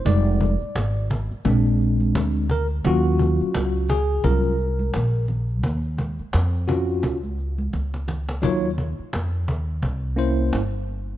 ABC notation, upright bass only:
X:1
M:4/4
L:1/16
Q:"Swing 16ths" 1/4=86
K:Ebdor
V:1 name="Upright bass" clef=bass
F,,,3 z A,,,3 z B,,,4 =D,,4 | E,,3 z D,,4 C,,4 B,,,4 | E,,3 z F,,4 D,,4 D,,4 | E,,3 z F,,2 E,,2 C,,4 =G,,,4 |]